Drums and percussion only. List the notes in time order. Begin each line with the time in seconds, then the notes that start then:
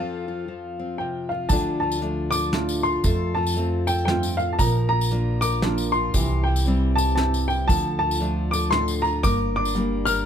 1.49 kick, closed hi-hat, tambourine
1.92 tambourine
2.02 closed hi-hat
2.32 tambourine
2.44 tambourine
2.53 snare, closed hi-hat
2.69 tambourine
2.84 tambourine
3.04 kick, closed hi-hat, tambourine
3.47 tambourine
3.56 closed hi-hat
3.87 tambourine
3.98 tambourine
4.08 snare, closed hi-hat
4.23 tambourine
4.39 tambourine
4.59 kick, closed hi-hat, tambourine
5.01 tambourine
5.11 closed hi-hat
5.42 tambourine
5.52 tambourine
5.62 snare, closed hi-hat
5.78 tambourine
5.94 tambourine
6.14 kick, closed hi-hat, tambourine
6.56 tambourine
6.66 closed hi-hat, tambourine
6.98 tambourine
7.09 tambourine
7.17 snare, closed hi-hat
7.34 tambourine
7.50 tambourine
7.69 kick, closed hi-hat, tambourine
8.11 tambourine
8.21 closed hi-hat
8.53 tambourine
8.63 tambourine
8.72 snare, closed hi-hat
8.88 tambourine
9.04 tambourine
9.23 kick, closed hi-hat, tambourine
9.65 tambourine
9.75 closed hi-hat
10.06 tambourine